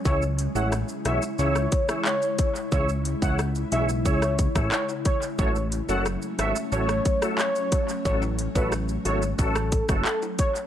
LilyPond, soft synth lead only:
\new Staff \with { instrumentName = "Soft synth lead" } { \time 4/4 \key a \major \tempo 4 = 90 cis''16 r8 fis''16 r8 e''16 r16 cis''8. r16 cis''8. r16 | cis''16 r8 fis''16 r8 e''16 r16 cis''8. r16 cis''16 r16 cis''16 r16 | cis''16 r8 fis''16 r8 e''16 r16 cis''8. r16 cis''8. r16 | cis''16 r8 b'16 r8 cis''16 r16 a'8. r16 a'16 r16 cis''16 r16 | }